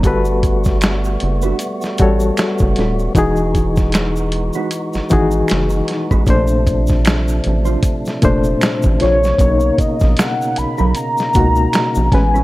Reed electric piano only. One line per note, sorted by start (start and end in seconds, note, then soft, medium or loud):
0.05 1.26 G3 medium
0.05 1.26 F#4 medium
0.05 1.26 A4 medium
0.05 1.27 B4 medium
2.00 2.91 G3 medium
2.00 2.92 F#4 medium
2.00 2.92 A4 medium
2.00 2.93 C#5 medium
3.15 4.37 E3 medium
3.15 4.37 D#4 medium
3.15 4.38 F#4 medium
3.15 4.38 G#4 loud
5.10 6.03 E3 medium
5.10 6.03 D#4 medium
5.10 6.03 F#4 medium
5.10 6.04 G#4 medium
6.27 7.49 A#2 medium
6.27 7.49 A3 medium
6.27 7.49 D4 medium
6.27 7.50 C5 medium
8.22 9.14 A#2 medium
8.22 9.15 A3 medium
8.22 9.15 D4 medium
8.22 9.16 C5 medium
9.38 10.60 B2 medium
9.38 10.61 A#3 medium
9.38 9.47 C#4 medium
9.38 10.61 C#5 medium
9.47 10.64 D#4 medium
11.34 11.96 B2 medium
11.34 11.97 A#3 medium
11.34 11.97 D#4 medium
11.34 11.97 F#4 medium
12.12 12.44 A2 medium
12.12 12.44 G#3 medium
12.12 12.44 C#4 medium
12.12 12.44 B4 medium